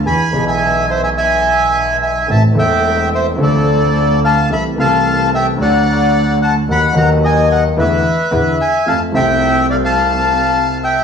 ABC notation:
X:1
M:4/4
L:1/16
Q:1/4=109
K:Am
V:1 name="Bandoneon"
[^gb]3 [eg]3 [ce] [eg] [eg]6 [eg]2 | [ea]2 [eg]4 [ce]2 [Ad]6 [fa]2 | [eb]2 [fa]4 [eg]2 [d^f]6 [fa]2 | [^fb]2 [f_b]2 [^d^g]2 [df]2 [=Be]6 [eg]2 |
[fa]2 [eg]4 [df] [fa]6- [fa] [eg]2 |]
V:2 name="Grand piano" clef=bass
[E,,E,^G,B,^G]2 [B,,,B,,E,G,B,G]12- [B,,,B,,E,G,B,G]2 | [A,,,A,,E,A,CA]2 [E,,,E,,E,A,CA]6 [D,,D,F,CDA]8 | [C,,C,E,A,CA]2 [C,,C,E,A,CA]6 [D,,D,^F,A,^F]8 | [^D,,^D,^F,B,^F]2 [D,,D,F,B,F]6 [E,,=D,E,A,B,E]2 z2 [E,,D,E,^G,B,E]2 z2 |
[F,,F,A,CA]2 [C,,C,F,A,CA]12- [C,,C,F,A,CA]2 |]
V:3 name="Double bass" clef=bass
E,,2 B,,,12- B,,,2 | A,,,2 E,,,6 D,,8 | C,,2 C,,6 D,,8 | ^D,,2 D,,6 E,,2 z2 E,,2 z2 |
F,,2 C,,12- C,,2 |]